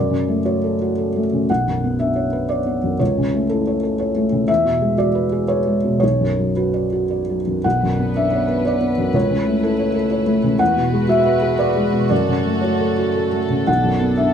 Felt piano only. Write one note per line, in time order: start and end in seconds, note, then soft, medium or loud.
0.00 1.45 F#2 soft
0.00 0.41 D5 medium
0.10 0.38 C#3 soft
0.29 0.56 A3 soft
0.45 0.73 F#4 soft
0.45 1.19 C#5 soft
0.64 0.91 A4 soft
0.81 1.08 F#4 soft
0.98 1.25 A4 soft
1.16 1.43 A3 soft
1.33 1.50 C#3 soft
1.50 2.97 B1 soft
1.50 1.96 F#5 medium
1.67 1.94 F#2 soft
1.84 2.10 B3 soft
1.99 2.26 D4 soft
1.99 2.46 E5 medium
2.16 2.43 C#5 soft
2.33 2.60 B4 soft
2.49 2.77 C#5 soft
2.49 2.96 D5 medium
2.67 2.93 B3 soft
2.83 3.00 F#2 soft
2.99 4.44 C#2 soft
2.99 3.46 C#5 medium
3.18 3.44 C#3 soft
3.34 3.60 A3 soft
3.49 3.76 E4 soft
3.49 3.82 A4 medium
3.67 3.93 C#5 soft
3.83 4.09 A4 soft
3.99 4.25 C#5 soft
4.16 4.42 A3 soft
4.32 4.48 C#3 soft
4.48 5.98 E2 medium
4.48 4.94 E5 medium
4.65 4.92 B2 soft
4.82 5.08 G#3 soft
4.98 5.25 F#4 soft
4.98 5.45 D5 medium
5.15 5.42 B4 soft
5.32 5.59 G#4 soft
5.48 5.76 B4 soft
5.48 5.98 C#5 medium
5.67 5.95 G#3 soft
5.84 6.02 B2 soft
6.00 7.61 B1 soft
6.00 6.52 C#5 medium
6.21 6.50 F#2 soft
6.39 6.68 F#3 soft
6.56 6.86 F#4 soft
6.56 7.34 B4 soft
6.74 7.03 D5 soft
6.92 7.21 F#4 soft
7.10 7.39 D5 soft
7.29 7.58 F#3 soft
7.47 7.65 F#2 soft
7.64 9.11 B1 soft
7.64 8.12 F#5 medium
7.83 8.09 F#2 soft
7.99 8.26 B3 soft
8.16 8.43 D4 soft
8.16 8.62 E5 medium
8.33 8.59 C#5 soft
8.48 8.75 B4 soft
8.65 8.91 C#5 soft
8.65 9.11 D5 medium
8.81 9.07 B3 soft
8.98 9.14 F#2 soft
9.14 10.56 C#2 soft
9.14 9.60 C#5 medium
9.30 9.56 C#3 soft
9.46 9.72 A3 soft
9.63 9.89 E4 soft
9.63 9.93 A4 medium
9.79 10.05 C#5 soft
9.95 10.21 A4 soft
10.11 10.37 C#5 soft
10.26 10.53 A3 soft
10.44 10.60 C#3 soft
10.59 12.06 E2 medium
10.59 11.05 F#5 medium
10.77 11.03 B2 soft
10.93 11.19 G#3 soft
11.08 11.35 F#4 soft
11.08 11.55 E5 medium
11.25 11.52 B4 soft
11.42 11.69 G#4 soft
11.59 11.86 B4 soft
11.59 12.07 D5 medium
11.76 12.04 G#3 soft
11.94 12.11 B2 soft
12.10 13.64 F#2 soft
12.10 12.59 D5 medium
12.28 12.56 C#3 soft
12.45 12.73 A3 soft
12.61 12.91 F#4 soft
12.61 13.37 C#5 soft
12.80 13.08 A4 soft
12.98 13.26 F#4 soft
13.15 13.43 A4 soft
13.33 13.61 A3 soft
13.50 13.67 C#3 soft
13.67 14.34 B1 soft
13.67 14.15 F#5 medium
13.84 14.12 F#2 soft
14.01 14.29 B3 soft
14.17 14.34 D4 soft
14.17 14.34 E5 medium